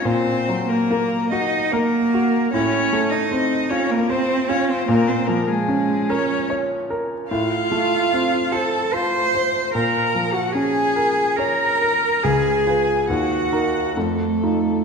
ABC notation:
X:1
M:3/4
L:1/16
Q:1/4=74
K:Bbm
V:1 name="Violin"
c3 B3 e2 B4 | d3 e3 d B c2 d c | B c B A3 d2 z4 | f6 =a2 c'4 |
b3 g a4 b4 | a4 g4 =A4 |]
V:2 name="Grand piano"
B,,2 G,2 B,2 G2 B2 G2 | =A,,2 =A,2 C2 F2 c2 F2 | B,,2 F,2 D2 B2 d2 B2 | =A,,2 =A,2 C2 c2 F2 c2 |
B,,2 F,2 D2 B2 d2 B2 | D,,2 [F_c]2 E,,2 [EB]2 F,,2 [EF]2 |]
V:3 name="Cello"
C3 B,3 E2 B,4 | D3 E3 D B, C2 D C | B, C B, A,3 D2 z4 | F6 =A2 c4 |
B3 G A4 B4 | A4 G4 =A,4 |]